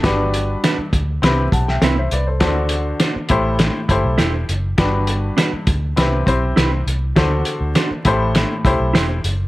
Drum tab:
HH |x-x-x-x-x-x-x-x-|x-x-x-x-x-x-x-x-|x-x-x-x-x-x-x-x-|x-x-x-x-x-x-x-x-|
SD |o---o---o--oo---|o---o---o---o---|o---o---o---o---|o---o---o---o---|
BD |o-----o---o-----|o-----o---o-----|o-----o---o-----|o-----o---o-----|